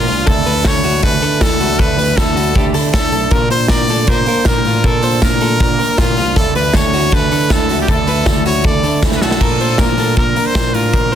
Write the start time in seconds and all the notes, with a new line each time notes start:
Already playing: F4
0.08 C2 D4 F4, open hi-hat, tambourine
0.12 A#3
0.26 D2 D3 A3 D4 E4 A4, kick, closed hi-hat
0.46 D2 A3 D4 E4 B4, open hi-hat, tambourine
0.65 D2 D3 A3 D4 A4 C#5, kick, snare, closed hi-hat, tambourine
0.69 E4
0.83 D2 A3 D4 E4 F#4, open hi-hat, tambourine
1.03 D2 D3 A3 D4 E4 A4 B4, kick, closed hi-hat, tambourine
1.22 D3 A3 D4 E4 A4, open hi-hat, tambourine
1.41 D2 D3 A3 D4 E4 A4, kick, snare, closed hi-hat, tambourine
1.60 C#2 A3 D4 E4 F#4, open hi-hat, tambourine
1.79 D2 D3 A3 D4 E4 A4 B4, kick, closed hi-hat, tambourine
1.97 D2 D4 E4 B4, open hi-hat
2.01 A3
2.17 D3 A3 D4 A4, kick, snare, closed hi-hat, tambourine
2.21 E4
2.35 D2 D4 E4 F#4, open hi-hat, tambourine
2.40 A3
2.55 D2 D3 A3 D4 E4 G4, kick, tambourine
2.73 D3 D4 E4 A4, open hi-hat, tambourine
2.78 A3
2.93 D2 A3 D4 E4 A4, kick, snare, closed hi-hat, tambourine
3.11 B1 D4 E4 A4, open hi-hat, tambourine
3.16 A3
3.31 A#2 D3 A#3 D4 F4 A#4, kick, closed hi-hat, tambourine
3.50 A#2 D4 F4 C5, open hi-hat
3.54 A#3
3.68 D3 A#3 D4 A#4 D5, kick, snare, closed hi-hat, tambourine
3.73 F4
3.87 A#2 A#3 D4 F4 A4, open hi-hat, tambourine
4.07 A#2 D3 A#3 D4 F4 A#4 C5, kick, closed hi-hat, tambourine
4.26 A#3 D4 F4 A#4, open hi-hat, tambourine
4.31 A#3
4.45 A#2 D3 A#3 D4 F4 A#4, kick, snare, closed hi-hat, tambourine
4.65 A2 A#3 D4 F4, open hi-hat, tambourine
4.84 A#2 D3 A#3 D4 F4 A4 A#4, kick, closed hi-hat, tambourine
5.02 A#2 D4 F4 C5, open hi-hat
5.06 A#3
5.22 A#2 D3 A#3 D4 F4 A#4, kick, snare, closed hi-hat, tambourine
5.41 A#2 A#3 D4 F4 A4, open hi-hat, tambourine
5.60 A#2 D3 A#3 D4 F4 A#4, kick, closed hi-hat, tambourine
5.79 A#3 D4 F4 A#4, open hi-hat, tambourine
5.83 A#3
5.98 A#2 D3 A#3 D4 F4, kick, snare, closed hi-hat, tambourine
6.17 C2 A#3 D4 F4, open hi-hat, tambourine
6.36 D2 D3 A3 D4 E4 A4, kick, closed hi-hat
6.55 D2 A3 D4 E4 B4, open hi-hat, tambourine
6.74 D2 D3 A3 D4 A4 C#5, kick, snare, closed hi-hat, tambourine
6.78 E4
6.93 D2 D4 E4 F#4, open hi-hat, tambourine
6.98 A3
7.12 D2 D3 A3 D4 A4 B4, kick, closed hi-hat, tambourine
7.16 E4
7.31 D3 A3 D4 E4 A4, open hi-hat, tambourine
7.50 D2 D3 A3 D4 E4 A4, kick, snare, closed hi-hat, tambourine
7.69 C#2 A3 D4 E4 F#4, open hi-hat, tambourine
7.82 G4
7.88 D2 D3 A3 D4 E4 A4, kick, closed hi-hat
8.07 D2 A3 D4 E4 B4, open hi-hat, tambourine
8.26 D2 D3 A3 D4 E4 A4, kick, snare, closed hi-hat, tambourine
8.46 D2 A3 D4 E4 F#4 C#5, open hi-hat, tambourine
8.64 D2 D3 A3 D4 E4 A4 D5, kick, closed hi-hat, tambourine
8.83 D3 A3 D4 E4 A4, open hi-hat, tambourine
9.02 D2 D3 A3 D4 E4, kick, snare, tambourine
9.12 snare
9.16 B4
9.21 B1 A3 D4 E4 F#4 A4, snare, tambourine
9.31 snare
9.41 A#2 F3 A#3 D4 F4 A#4, kick, crash, tambourine
9.60 A#2 A#3 D4 F4 C5, open hi-hat, tambourine
9.78 A#2 F3 A#3 D4 A#4, kick, snare, closed hi-hat, tambourine
9.82 F4
9.98 A#2 A#3 D4 F4 A4, open hi-hat, tambourine
10.16 A#2 F3 A#3 D4 F4 A#4, kick, closed hi-hat, tambourine
10.35 A#3 D4 F4 A#4, open hi-hat, tambourine
10.46 C5
10.55 A#2 F3 A#3 D4, kick, snare, closed hi-hat, tambourine
10.74 A2 A#3 D4 F4 A#4, open hi-hat, tambourine
10.93 A#2 F3 A#3 D4 F4 A#4, kick, closed hi-hat
11.12 C5